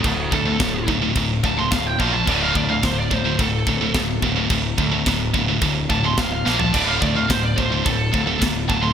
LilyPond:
<<
  \new Staff \with { instrumentName = "Lead electric guitar" } { \time 4/4 \tempo 4 = 108 <fis' a'>8 a'4 r4 a''16 c'''16 f''16 g''16 f''16 a''16 | d''16 f''16 d''16 f''16 c''16 d''16 c''8 a'4 r4 | r2 r8 a''16 c'''16 f''16 f''16 f''16 a''16 | d''16 f''16 d''16 f''16 c''16 d''16 c''8 a'4 r8 a''16 c'''16 | }
  \new Staff \with { instrumentName = "Distorted electric guitar" } { \clef bass \time 4/4 <d, a,>8 <d, a,>16 <d, a,>16 <d, a,>8 <d, a,>16 <d, a,>16 <d, a,>8 <d, a,>16 <d, a,>16 <d, a,>8 <bes, f bes>16 <bes, f>16 | <d, a, d>8 <d, a,>16 <d, a,>16 <d, a,>8 <d, a,>16 <d, a,>16 <d, a,>8 <d, a,>16 <d, a,>16 <d, a,>8 <d, a,>16 <d, a,>16 | <d, a,>8 <d, a,>16 <d, a,>16 <d, a,>8 <d, a,>16 <d, a,>16 <d, a,>8 <d, a,>16 <d, a,>16 <d, a,>8 <bes, f bes>16 <bes, f>16 | <d, a, d>8 <d, a,>16 <d, a,>16 <d, a,>8 <d, a,>16 <d, a,>16 <d, a,>8 <d, a,>16 <d, a,>16 <d, a,>8 <d, a,>16 <d, a,>16 | }
  \new Staff \with { instrumentName = "Distorted electric guitar" } { \clef bass \time 4/4 <d, a,>8 <d, a,>16 <d, a,>16 <d, a,>8 <d, a,>16 <d, a,>16 <d, a,>8 <d, a,>16 <d, a,>16 <d, a,>8 <bes, f bes>16 <bes, f>16 | <d, a, d>8 <d, a,>16 <d, a,>16 <d, a,>8 <d, a,>16 <d, a,>16 <d, a,>8 <d, a,>16 <d, a,>16 <d, a,>8 <d, a,>16 <d, a,>16 | <d, a,>8 <d, a,>16 <d, a,>16 <d, a,>8 <d, a,>16 <d, a,>16 <d, a,>8 <d, a,>16 <d, a,>16 <d, a,>8 <bes, f bes>16 <bes, f>16 | <d, a, d>8 <d, a,>16 <d, a,>16 <d, a,>8 <d, a,>16 <d, a,>16 <d, a,>8 <d, a,>16 <d, a,>16 <d, a,>8 <d, a,>16 <d, a,>16 | }
  \new Staff \with { instrumentName = "Picked electric bass" } { \clef bass \time 4/4 d,,8 d,8 d,,8 d,,8 d,,8 d,,8 d,,8 bes,,8 | d,,8 d,8 d,,8 d,,8 d,,8 d,,8 d,,8 d,,8 | d,,8 d,8 d,,8 d,,8 d,,8 d,,8 d,,8 bes,,8 | d,,8 d,8 d,,8 d,,8 d,,8 d,,8 d,,8 d,,8 | }
  \new DrumStaff \with { instrumentName = "Drums" } \drummode { \time 4/4 <cymc bd>8 bd8 <cymc bd sn>8 bd8 <cymc bd>8 bd8 <cymc bd sn>8 bd8 | <cymc bd>8 bd8 <cymc bd sn>8 bd8 <cymc bd>8 bd8 <cymc bd sn>8 bd8 | <cymc bd>8 bd8 <cymc bd sn>8 bd8 <cymc bd>8 bd8 <cymc bd sn>8 sn16 tomfh16 | <cymc bd>8 bd8 <cymc bd sn>8 bd8 <cymc bd>8 bd8 <cymc bd sn>8 bd8 | }
>>